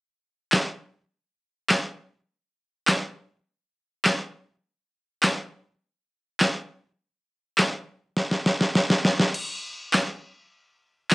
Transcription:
0.52 snare, clap
1.69 snare, clap
2.87 snare, clap
4.05 snare, clap
5.23 snare, clap
6.40 snare, clap
7.58 snare, clap
8.17 snare
8.31 snare
8.46 snare
8.61 snare
8.75 snare
8.90 snare
9.05 snare
9.20 snare
9.34 crash
9.93 snare, clap
11.10 snare, clap

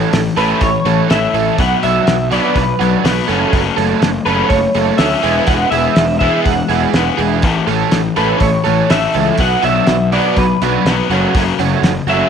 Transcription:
Already playing: A2 E3 A3 C#4 A4
0.13 A1 A2 E3, snare, open hi-hat
0.37 A1 A2 E3 A3 C#4 A4 B4, open hi-hat
0.61 A1 A2 E3 C#5, kick, open hi-hat
0.85 A1 A2 E3 A3 C#4 A4, open hi-hat
1.09 A1 A2 E3 A3 E5, snare, open hi-hat
1.33 A1 A2 E3 A3 C#4 A4, open hi-hat
1.58 B1 B2 F#3 B3 F#5, kick, open hi-hat
1.83 B1 B2 F#3 B3 D4 F#4 E5, open hi-hat
2.07 B1 B2 F#3, snare, open hi-hat
2.31 B2 F#3 B3 D4 F#4 D5, open hi-hat
2.56 B1 B2 F#3 B4, kick, open hi-hat
2.79 B1 B2 F#3 B3 D4 F#4, open hi-hat
3.04 B1 B2 F#3 B3, snare, open hi-hat
3.28 F#1 F#3 A3 C#4 A4, open hi-hat
3.52 F#1 F#3 A3 C#4, kick, open hi-hat
3.77 F#1 F#3 A3 C#4 A4, open hi-hat
4.02 F#1 F#3 A3, snare, open hi-hat
4.25 F#1 F#3 A3 C#4 A4 B4, open hi-hat
4.49 F#1 F#3 A3 C#5, kick, open hi-hat
4.74 F#1 F#3 A3 C#4 A4, open hi-hat
4.98 D2 F#3 A3 C#4 E5, snare, open hi-hat
5.23 E1 E3 G#3 B3 E4 G#4, open hi-hat
5.47 E1 E3 G#3 B3 F#5, kick, open hi-hat
5.70 E1 E3 G#3 B3 E4 G#4 E5, open hi-hat
5.96 E1 E3 G#3, snare, open hi-hat
6.19 E3 G#3 B3 E4 G#4 E5, kick, open hi-hat
6.23 B3
6.44 E1 E3 G#3 F#5, kick, open hi-hat
6.69 E1 E3 G#3 B3 E4 G#4, open hi-hat
6.93 E1 E3 G#3 B3, snare, open hi-hat
7.17 E1 E3 G#3 B3 E4 G#4, open hi-hat
7.42 A1 A2 E3 A3, kick, open hi-hat
7.67 A1 A2 E3 A3 C#4 A4, open hi-hat
7.91 A1 A2 E3, snare, open hi-hat
8.16 A1 A2 E3 A3 C#4 A4 B4, open hi-hat
8.40 A1 A2 E3 C#5, kick, open hi-hat
8.64 A1 A2 E3 A3 C#4 A4, open hi-hat
8.90 A1 A2 E3 A3 E5, snare, open hi-hat
9.14 C#2 A2 E3 A3 C#4 A4, open hi-hat
9.38 B1 B2 F#3 B3 F#5, kick, open hi-hat
9.63 B1 B2 F#3 B3 D4 F#4 E5, open hi-hat
9.87 B1 B2 F#3, snare, open hi-hat
10.12 B2 F#3 B3 D4 F#4 D5, open hi-hat
10.37 B1 B2 F#3 B4, kick, open hi-hat
10.62 B1 B2 F#3 B3 D4 F#4, open hi-hat
10.85 B1 B2 F#3 B3, snare, open hi-hat
11.10 F#1 F#2 C#3 F#3 A3 C#4 F#4, open hi-hat
11.35 F#1 F#2 C#3 F#3, kick, open hi-hat
11.59 F#1 F#2 C#3 A3 C#4 F#4, open hi-hat
11.82 F#1 F#2 C#3, snare, open hi-hat
12.07 F#1 F#2 C#3 F#3 A3 C#4 F#4 E5, open hi-hat

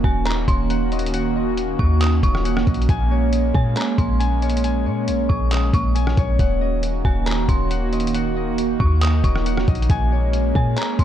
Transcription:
Already playing: D#3 A#3 C#4 F#4 D#5 F#5
0.04 D#1 F#4 G#5, kick
0.26 D#4 A#5, clap, closed hi-hat
0.48 D#1 C#4 C6, kick, closed hi-hat
0.70 F#5, closed hi-hat
0.92 D#5, closed hi-hat
0.99 closed hi-hat
1.06 closed hi-hat
1.14 F#5, closed hi-hat
1.36 D#5
1.57 closed hi-hat
1.79 D#2 F#4 C#6, kick
2.01 D#4 D#6, clap, closed hi-hat
2.23 D#1 C#4 C#6, kick, closed hi-hat
2.35 cross-stick
2.45 F#5, closed hi-hat
2.57 cross-stick
2.67 A#1 D#5, kick, closed hi-hat
2.74 closed hi-hat
2.82 closed hi-hat
2.89 A#1 G#3 G#5, kick, closed hi-hat
3.11 C#5
3.33 closed hi-hat
3.55 A#2 G#4 G#5, kick
3.77 C#4 A#5, clap, closed hi-hat
3.98 A#1 A#3 C6, kick, closed hi-hat
4.20 G#5, closed hi-hat
4.42 C#5, closed hi-hat
4.50 closed hi-hat
4.57 closed hi-hat
4.64 G#5, closed hi-hat
4.86 A#2 C#5
5.08 A#1, closed hi-hat
5.29 A#1 G#4 C#6, kick
5.52 C#4 D#6, clap, closed hi-hat
5.73 A#1 A#3 C#6, kick, closed hi-hat
5.95 G#5, closed hi-hat
6.07 cross-stick
6.17 A#1 C#5, kick, closed hi-hat
6.39 D#1 D#3 A#3 F#4 F#5, kick, closed hi-hat
6.61 D#5
6.83 closed hi-hat
7.05 D#1 F#4 G#5, kick
7.26 D#4 A#5, clap, closed hi-hat
7.49 D#1 C#4 C6, kick, closed hi-hat
7.70 F#5, closed hi-hat
7.93 D#5, closed hi-hat
8.00 closed hi-hat
8.07 closed hi-hat
8.14 D#4 F#5, closed hi-hat
8.36 D#5
8.58 closed hi-hat
8.79 D#2 F#4 C#6, kick
9.02 D#4 D#6, clap, closed hi-hat
9.24 D#1 C#4 C#6, kick, closed hi-hat
9.36 cross-stick
9.46 F#5, closed hi-hat
9.57 cross-stick
9.68 A#1 D#5, kick, closed hi-hat
9.75 closed hi-hat
9.82 closed hi-hat
9.90 A#1 G#3 C#4 G#5, kick, closed hi-hat
10.12 C#5
10.33 closed hi-hat
10.55 A#2 G#4 G#5, kick
10.77 C#4 A#5, clap, closed hi-hat
10.99 A#1 A#3 C6, kick, closed hi-hat

